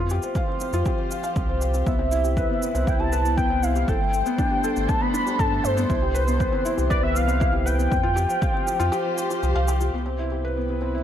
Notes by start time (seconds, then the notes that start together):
Already playing: F2 F3 F4
0.00 F4
0.10 G4, shaker
0.22 G4 C5, shaker
0.35 C5 F5, kick, shaker
0.48 C4
0.60 C4, shaker
0.73 F2 F4, shaker
0.86 G4, kick, shaker
0.99 C5
1.11 F5, shaker
1.23 F5, shaker
1.36 C2 C4, kick, shaker
1.48 C2 C5
1.61 F5, shaker
1.74 C4, shaker
1.86 C2 C3 B3 E5, kick, shaker
1.99 C4
2.07 E4
2.12 E4, shaker
2.24 G4, shaker
2.37 B4, kick, shaker
2.50 B3
2.62 B3 C5, shaker
2.75 C2 C4, shaker
2.87 C2 E4 G5, kick, shaker
2.99 G4 A5
3.12 B4, shaker
3.25 B3, shaker
3.37 B3 G5, kick, shaker
3.50 C4
3.63 E4 F5, shaker
3.76 G4, shaker
3.88 G1 G3 A4 G5, kick, shaker
4.01 A3
4.13 A3, shaker
4.23 B3 D4, shaker
4.38 D4, kick, shaker
4.50 G4 A4
4.64 A4, shaker
4.76 G1 A3, shaker
4.88 A3 A5, kick, shaker
5.01 B3 B5
5.14 D4, shaker
5.26 G4, shaker
5.39 G2 A4 A5, kick, shaker
5.52 A3
5.64 G2 A3 C5, shaker
5.77 B3, shaker
5.89 C2 C3 E4, kick, shaker
6.02 G4
6.14 E3 B4, shaker
6.27 B3, shaker
6.40 B3, kick, shaker
6.52 C4
6.65 E4, shaker
6.77 C2 G4, shaker
6.90 C2 B4 D5, kick, shaker
7.03 B3 E5
7.15 B3 F5, shaker
7.27 C4, shaker
7.40 E4, kick, shaker
7.53 G4
7.66 B4 G5, shaker
7.78 B3, shaker
7.91 F2 F3 C4, kick, shaker
8.03 F4
8.16 G4, shaker
8.29 C5, shaker
8.41 F5, kick, shaker
8.50 C4 G4
8.67 C4, shaker
8.80 F2 F4 C5, shaker
8.92 G4, shaker
9.05 C5
9.18 G5, shaker
9.30 G4, shaker
9.43 C2 G4, shaker
9.55 C2 F5
9.68 G4, shaker
9.80 F4, shaker
9.93 C2 C3 B3
10.06 C4
10.16 E4 B4
10.31 G4, shaker
10.42 E4 B4
10.57 B3
10.69 B3, shaker
10.82 C4
10.95 E4